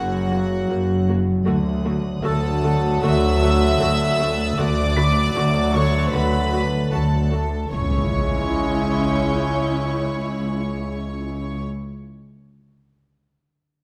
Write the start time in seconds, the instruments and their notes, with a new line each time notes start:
Already playing: double bass section F#1, cello section F#2, harp F#2 F#3, trombone section C#3 F#3, french horn section A#3 F#4, violin section F#4 F#5 F#6 A#6
0.31 harp F#3, viola section A#3 F#4
0.70 double bass section F#1, harp F#2, cello section F#2, viola section A#3 F#4
1.09 harp F#3, viola section A#3 F#4
1.45 double bass section D2, cello section D2, harp D3, trombone section D3 F#3, viola section A3 F#4, french horn section A3 F#4, violin section D#6 F#6
1.85 harp D3, viola section A3 F#4
2.23 double bass section D2, cello section D2, harp D3, viola section A3 F#4, violin section A4 A5, grand piano E6
2.63 harp D3, viola section A3 F#4
3.03 double bass section D2, cello section D2, harp D3, viola section A3 F#4, violin section E5 E6 A6
3.42 viola section A3 F#4, harp D4
3.81 cello section D2, double bass section D2, harp D3, viola section A3 F#4
4.19 viola section A3 F#4, harp D4
4.57 double bass section D2, cello section D2, trombone section D3 F#3, harp D3, french horn section A3 F#4, viola section A3 F#4, violin section D5 D6
4.96 harp D3, viola section A3 F#4, grand piano B5 B6
5.23 violin section E6
5.35 double bass section D2, cello section D2, harp D3, viola section A3 F#4
5.74 harp D3, viola section A3 F#4, violin section C#5 C#6
6.13 double bass section D2, cello section D2, harp D3, viola section A3 F#4, violin section B4 B5
6.53 viola section A3 F#4, harp D4
6.92 double bass section D2, cello section D2, harp D3, viola section A3 F#4, violin section A4 A5
7.32 viola section A3 F#4, harp D4
7.72 cello section C#2, double bass section C#2, trombone section C#3 G#3, viola section C#4 E4, french horn section C#4 E4, violin section C#5 C#6, impact
8.52 violin section G6
9.95 violin section F#6